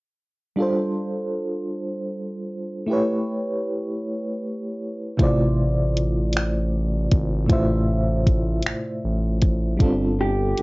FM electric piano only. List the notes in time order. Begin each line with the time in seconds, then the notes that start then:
0.56 G3 D4 F4
0.60 A4 C5
2.86 A3 E4 G4
2.91 B4 C#5
5.17 C3 A3 E4 F4
5.22 C5 D5
7.46 A2 A3 E4 F4
7.52 C5 E5
9.77 G3 D4 F4
9.82 C4 A4